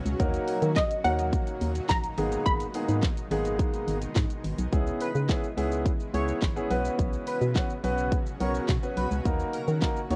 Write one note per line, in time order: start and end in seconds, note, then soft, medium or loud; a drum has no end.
0.00 0.17 B2 medium
0.00 0.16 C#3 medium
0.00 0.17 F#3 medium
0.00 0.17 C#4 medium
0.00 2.14 F#4 medium
0.06 0.15 C#2 medium
0.06 closed hi-hat medium
0.06 shaker medium
0.19 0.39 D#2 loud
0.19 2.16 A#2 medium
0.19 4.69 D#3 medium
0.19 0.68 F#3 medium
0.19 2.16 F#3 medium
0.19 0.68 A#3 medium
0.19 4.69 D#4 medium
0.19 0.68 D#4 medium
0.19 0.68 F#4 medium
0.19 0.68 A#4 loud
0.19 kick loud
0.19 closed hi-hat medium
0.19 shaker medium
0.34 closed hi-hat medium
0.34 shaker medium
0.48 open hi-hat medium
0.48 shaker medium
0.62 0.81 D#3 loud
0.62 closed hi-hat medium
0.62 shaker medium
0.76 1.05 D#5 medium
0.76 kick loud
0.76 snare medium
0.76 clap loud
0.76 closed hi-hat medium
0.76 shaker medium
0.91 closed hi-hat medium
0.91 shaker medium
1.04 1.33 D#2 loud
1.04 1.69 F#3 medium
1.04 1.69 A#3 medium
1.04 1.69 D#4 medium
1.04 1.69 F#4 medium
1.04 1.69 A#4 medium
1.04 1.92 F#5 medium
1.04 open hi-hat medium
1.04 shaker medium
1.19 closed hi-hat medium
1.19 shaker medium
1.33 kick loud
1.33 closed hi-hat medium
1.33 shaker medium
1.47 closed hi-hat medium
1.47 shaker medium
1.61 1.80 D#2 medium
1.61 open hi-hat medium
1.61 shaker medium
1.75 closed hi-hat medium
1.75 shaker medium
1.89 2.09 A#1 loud
1.89 2.48 A#5 loud
1.89 kick loud
1.89 snare medium
1.89 clap loud
1.89 closed hi-hat medium
1.89 shaker medium
2.04 closed hi-hat medium
2.04 shaker medium
2.18 2.37 G#1 loud
2.18 4.70 B2 medium
2.18 4.70 G#3 medium
2.18 2.63 G#3 medium
2.18 2.63 A#3 medium
2.18 2.63 B3 medium
2.18 2.63 D#4 medium
2.18 2.63 G#4 medium
2.18 open hi-hat medium
2.18 shaker medium
2.32 closed hi-hat medium
2.32 shaker medium
2.46 2.65 G#1 loud
2.46 4.12 B5 loud
2.46 kick loud
2.46 closed hi-hat medium
2.46 shaker medium
2.60 closed hi-hat medium
2.60 shaker medium
2.74 3.06 G#3 medium
2.74 3.07 A#3 medium
2.74 3.07 B3 medium
2.74 3.07 D#4 medium
2.74 3.07 G#4 medium
2.74 open hi-hat medium
2.74 shaker medium
2.88 3.08 G#2 loud
2.88 closed hi-hat medium
2.88 shaker medium
3.02 kick loud
3.02 snare medium
3.02 clap loud
3.02 closed hi-hat medium
3.02 shaker medium
3.17 closed hi-hat medium
3.17 shaker medium
3.31 3.59 G#1 loud
3.31 3.95 G#3 medium
3.31 3.95 A#3 medium
3.31 3.95 B3 medium
3.31 3.95 D#4 medium
3.31 3.95 G#4 loud
3.31 open hi-hat medium
3.31 shaker medium
3.45 closed hi-hat medium
3.45 shaker medium
3.59 kick loud
3.59 closed hi-hat medium
3.59 shaker medium
3.74 closed hi-hat medium
3.74 shaker medium
3.88 4.07 G#1 loud
3.88 open hi-hat medium
3.88 shaker medium
4.02 closed hi-hat medium
4.02 shaker medium
4.15 4.25 G#2 loud
4.15 kick loud
4.15 snare medium
4.15 clap loud
4.15 closed hi-hat medium
4.15 shaker medium
4.30 closed hi-hat medium
4.30 shaker medium
4.44 4.54 G#1 medium
4.44 open hi-hat medium
4.44 shaker medium
4.58 4.68 B1 loud
4.58 closed hi-hat medium
4.58 shaker medium
4.72 4.92 C#2 loud
4.72 9.21 C#3 medium
4.72 6.69 E3 medium
4.72 6.69 G#3 medium
4.72 6.69 B3 medium
4.72 5.05 B3 medium
4.72 5.05 C#4 medium
4.72 6.69 E4 medium
4.72 5.05 E4 medium
4.72 5.05 G#4 loud
4.72 kick loud
4.72 closed hi-hat medium
4.72 shaker medium
4.87 shaker medium
5.00 5.11 B4 medium
5.00 open hi-hat medium
5.00 shaker medium
5.15 5.34 C#3 loud
5.15 shaker medium
5.29 5.45 B3 medium
5.29 5.45 C#4 medium
5.29 5.45 E4 medium
5.29 5.45 G#4 loud
5.29 kick loud
5.29 snare medium
5.29 clap loud
5.29 closed hi-hat medium
5.29 shaker medium
5.44 shaker medium
5.57 5.86 C#2 medium
5.57 5.89 B3 medium
5.57 5.89 C#4 medium
5.57 5.89 E4 medium
5.57 5.90 G#4 medium
5.57 open hi-hat medium
5.57 shaker medium
5.72 shaker medium
5.86 kick loud
5.86 closed hi-hat medium
5.86 shaker medium
6.00 shaker soft
6.14 6.33 C#2 loud
6.14 6.38 B3 medium
6.14 6.38 C#4 medium
6.14 6.38 E4 medium
6.14 6.38 G#4 medium
6.14 6.24 C#5 medium
6.14 open hi-hat medium
6.14 shaker medium
6.28 shaker medium
6.42 6.61 G#1 medium
6.42 kick loud
6.42 snare medium
6.42 clap loud
6.42 closed hi-hat medium
6.42 shaker medium
6.56 6.69 B3 medium
6.56 6.69 C#4 medium
6.56 6.71 E4 medium
6.56 6.71 G#4 loud
6.56 shaker medium
6.70 6.90 B1 loud
6.70 9.23 B2 medium
6.70 9.23 F#3 medium
6.70 7.38 B3 medium
6.70 7.38 C#4 medium
6.70 9.23 C#4 medium
6.70 7.39 F#4 medium
6.70 10.16 F#4 medium
6.70 7.39 B4 loud
6.70 open hi-hat medium
6.70 shaker medium
6.85 shaker medium
6.99 7.18 B1 loud
6.99 kick loud
6.99 closed hi-hat medium
6.99 shaker medium
7.13 shaker medium
7.27 7.37 B4 medium
7.27 open hi-hat medium
7.27 shaker medium
7.41 7.60 B2 loud
7.41 shaker medium
7.55 7.71 B3 medium
7.55 7.72 C#4 medium
7.55 7.72 F#4 medium
7.55 7.72 B4 loud
7.55 kick loud
7.55 snare medium
7.55 clap loud
7.55 closed hi-hat medium
7.55 shaker medium
7.70 shaker medium
7.83 8.12 B1 loud
7.83 8.16 B3 medium
7.83 8.16 C#4 medium
7.83 8.16 F#4 medium
7.83 8.16 B4 loud
7.83 open hi-hat medium
7.83 shaker medium
7.98 shaker medium
8.12 kick loud
8.12 closed hi-hat medium
8.12 shaker medium
8.26 shaker medium
8.40 8.59 B1 loud
8.40 8.64 B3 medium
8.40 8.64 C#4 medium
8.40 8.65 F#4 medium
8.40 8.65 A#4 medium
8.40 8.50 C#5 medium
8.40 open hi-hat medium
8.40 shaker soft
8.55 shaker medium
8.68 8.78 B2 loud
8.68 kick loud
8.68 snare medium
8.68 clap loud
8.68 closed hi-hat medium
8.68 shaker medium
8.83 9.07 B3 medium
8.83 9.07 C#4 medium
8.83 9.07 F#4 medium
8.83 9.07 B4 medium
8.83 shaker medium
8.97 9.07 B1 medium
8.97 9.07 B4 medium
8.97 open hi-hat medium
8.97 shaker soft
9.11 9.21 C#2 medium
9.11 shaker medium
9.25 9.44 D#2 loud
9.25 10.16 A#2 medium
9.25 10.16 D#3 medium
9.25 10.16 F#3 medium
9.25 9.57 A#3 medium
9.25 10.16 D#4 medium
9.25 9.58 D#4 medium
9.25 9.58 F#4 medium
9.25 9.58 A#4 loud
9.25 kick loud
9.25 closed hi-hat medium
9.25 shaker medium
9.40 shaker medium
9.53 9.63 A#4 medium
9.53 open hi-hat medium
9.53 shaker medium
9.68 9.87 D#3 loud
9.68 shaker medium
9.81 9.98 A#3 loud
9.81 9.98 D#4 medium
9.81 9.98 F#4 medium
9.81 9.98 A#4 loud
9.81 kick loud
9.81 snare medium
9.81 clap loud
9.81 closed hi-hat medium
9.81 shaker medium
9.96 shaker medium
10.10 10.16 D#2 loud
10.10 10.16 A#3 medium
10.10 10.16 D#4 medium
10.10 10.16 F#4 medium
10.10 10.16 C#5 loud
10.10 open hi-hat medium
10.10 shaker medium